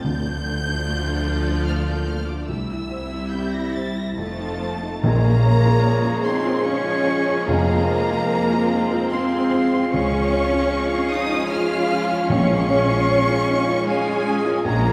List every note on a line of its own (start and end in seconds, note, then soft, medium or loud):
0.04 2.49 D2 medium
0.04 2.45 D2 medium
0.04 2.49 D2 medium
0.04 1.23 D3 medium
0.04 2.45 F3 medium
0.04 2.45 F4 medium
0.04 2.45 A4 medium
0.04 2.45 D5 medium
0.04 1.64 G6 loud
0.26 0.58 D4 medium
0.47 0.79 A4 medium
0.68 1.00 D4 medium
0.88 1.20 A3 medium
1.08 1.40 D4 medium
1.28 1.60 A4 medium
1.49 1.80 D4 medium
1.68 2.01 A3 soft
1.68 1.88 F6 medium
1.89 2.09 A#3 soft
1.89 2.09 G6 medium
2.08 2.41 A3 medium
2.08 2.28 F6 medium
2.28 2.49 D4 medium
2.28 2.49 D6 medium
2.47 4.14 C2 medium
2.47 4.18 C2 medium
2.47 4.14 G3 medium
2.47 4.14 E4 medium
2.47 4.14 E5 medium
2.47 3.30 E6 medium
2.70 3.03 E4 medium
2.90 3.24 C5 medium
3.12 3.45 E4 soft
3.31 3.67 C4 medium
3.31 3.53 G6 medium
3.53 3.88 E4 soft
3.53 3.74 A#6 medium
3.74 4.09 C5 medium
3.74 3.96 A6 medium
3.96 4.18 E4 soft
3.96 4.18 A#6 medium
4.17 4.82 F1 medium
4.17 5.01 F2 medium
4.17 4.82 F2 medium
4.17 4.80 F3 medium
4.17 5.00 A3 medium
4.17 4.79 D#4 medium
4.17 4.79 F4 medium
4.17 5.00 A4 medium
4.17 4.79 C5 medium
4.17 4.99 A5 medium
4.17 5.03 A6 medium
4.40 4.74 D#4 soft
4.61 4.96 C5 soft
4.82 5.04 D#4 soft
5.03 5.72 A#1 medium
5.03 6.21 A#2 loud
5.03 7.44 A#2 medium
5.03 8.27 C#3 medium
5.03 7.45 C#3 medium
5.03 9.89 F3 medium
5.03 5.23 G#3 medium
5.03 9.89 G#3 medium
5.03 6.26 A#3 loud
5.03 9.89 G#4 medium
5.03 6.63 G#4 medium
5.03 6.26 A#4 loud
5.03 6.62 C#5 medium
5.03 6.25 A#5 loud
5.24 5.45 A#3 medium
5.24 5.57 G#4 medium
5.45 5.65 C#4 medium
5.45 5.77 C#5 medium
5.65 5.85 F4 medium
5.65 5.97 F4 medium
5.85 6.05 C#4 medium
5.85 6.18 C#5 medium
6.05 6.26 A#3 medium
6.05 6.37 F4 medium
6.25 6.46 G#3 medium
6.25 6.67 C4 medium
6.25 6.45 D#4 medium
6.25 6.66 C5 medium
6.25 6.66 C6 loud
6.45 6.66 A#3 medium
6.45 6.78 F4 medium
6.64 6.86 C#4 medium
6.64 6.99 C#4 medium
6.64 7.47 C#4 medium
6.64 7.47 G#4 medium
6.64 7.48 C#5 loud
6.64 7.49 C#5 medium
6.64 7.47 C#6 loud
6.86 7.07 F4 medium
6.86 7.19 G#4 medium
7.07 7.40 C#4 medium
7.07 7.28 C#4 medium
7.27 7.48 A#3 medium
7.27 7.48 F4 medium
7.47 8.17 F2 medium
7.47 8.68 F2 loud
7.47 9.89 F2 medium
7.47 7.67 G#3 medium
7.47 9.12 A#3 loud
7.47 12.14 F4 medium
7.47 9.09 G#4 medium
7.47 9.09 A#4 loud
7.47 9.11 F5 medium
7.47 9.09 A#5 loud
7.69 7.89 C4 medium
7.69 8.02 G#4 medium
7.89 8.10 F4 medium
7.89 8.22 C5 medium
8.10 8.30 C4 medium
8.10 8.43 F4 medium
8.31 8.51 G#3 medium
8.31 9.93 C4 medium
8.31 8.64 C5 medium
8.52 8.72 C4 medium
8.52 8.84 F4 medium
8.71 8.93 D#4 medium
8.71 8.92 F4 medium
8.91 9.12 C4 medium
8.91 9.25 F4 medium
9.11 9.32 G#3 medium
9.11 9.93 C4 medium
9.11 9.45 C4 medium
9.11 9.91 G#4 medium
9.11 9.93 C5 medium
9.11 9.91 F5 medium
9.11 9.93 C6 medium
9.32 9.53 C4 medium
9.32 9.65 G#4 medium
9.52 9.85 C4 medium
9.52 9.72 F4 medium
9.72 9.92 C4 medium
9.72 9.93 F4 medium
9.91 10.59 C#2 medium
9.91 12.26 C#2 medium
9.91 14.62 F3 medium
9.91 10.10 G#3 medium
9.91 14.62 G#3 medium
9.91 11.09 C#4 loud
9.91 14.62 C#4 medium
9.91 14.61 G#4 medium
9.91 11.48 G#4 medium
9.91 10.87 C#5 loud
9.91 11.34 F5 medium
9.91 11.09 C#6 loud
10.11 10.32 C#4 medium
10.11 10.45 G#4 medium
10.32 10.52 F4 medium
10.32 10.65 C#5 medium
10.51 10.72 C#4 medium
10.51 10.84 F4 medium
10.72 10.92 G#3 medium
10.72 11.04 C#5 medium
10.91 11.11 C#4 medium
10.91 11.24 F4 medium
11.11 11.50 D#4 medium
11.11 11.32 D#4 medium
11.11 11.31 F4 medium
11.11 11.51 D#5 loud
11.11 11.51 D#6 loud
11.30 11.50 C#4 medium
11.30 11.63 F4 medium
11.51 11.71 G#3 medium
11.51 11.83 C#4 medium
11.51 12.30 F4 loud
11.51 12.02 G#4 medium
11.51 12.01 F5 medium
11.51 12.30 F5 loud
11.51 12.30 F6 loud
11.70 11.90 C#4 medium
11.70 12.03 G#4 medium
11.90 12.23 C#4 medium
11.90 12.10 F4 medium
12.10 12.29 C#4 medium
12.10 12.30 F4 medium
12.29 12.96 A#1 medium
12.29 14.62 A#1 medium
12.29 13.44 A#2 loud
12.29 12.48 G#3 medium
12.29 13.84 C#4 loud
12.29 14.62 F4 medium
12.29 13.83 G#4 medium
12.29 13.88 C#5 loud
12.29 13.83 F5 medium
12.29 13.84 C#6 loud
12.50 12.69 A#3 medium
12.50 12.82 G#4 medium
12.69 12.89 C#4 medium
12.69 13.01 C#5 medium
12.90 13.09 F4 medium
12.90 13.21 F4 medium
13.09 13.29 C#4 medium
13.09 13.41 C#5 medium
13.29 13.49 A#3 medium
13.29 13.60 F4 medium
13.48 13.68 G#3 medium
13.48 13.68 D#4 medium
13.68 13.88 A#3 medium
13.68 13.99 F4 medium
13.87 14.66 G#3 loud
13.87 14.18 C#4 medium
13.87 14.07 C#4 medium
13.87 14.64 G#4 loud
13.87 14.64 G#4 medium
13.87 14.26 F5 loud
13.87 14.66 G#5 loud
14.07 14.27 F4 medium
14.07 14.38 G#4 medium
14.25 14.57 C#4 medium
14.25 14.46 C#4 medium
14.25 14.67 D#5 medium
14.45 14.66 A#3 medium
14.45 14.65 F4 medium
14.65 14.93 A#1 medium
14.65 14.93 A#1 loud
14.65 14.93 C#3 medium
14.65 14.93 C#3 loud
14.65 14.93 F3 medium
14.65 14.84 G#3 medium
14.65 14.93 G#3 medium
14.65 14.93 A#3 loud
14.65 14.93 G#4 medium
14.65 14.93 A#4 loud
14.65 14.93 C#5 medium
14.65 14.93 A#5 loud
14.83 14.93 A#3 medium
14.83 14.93 G#4 medium